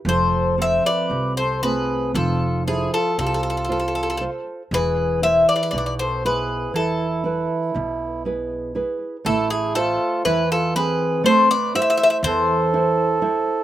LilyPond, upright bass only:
\new Staff \with { instrumentName = "Upright bass" } { \clef bass \time 9/8 \key a \minor \tempo 4. = 40 f,,4 c,4 f,,4 c,4. | e,,4 b,,4 e,,4 b,,4. | a,,4 e,4 a,,4 e,4. | }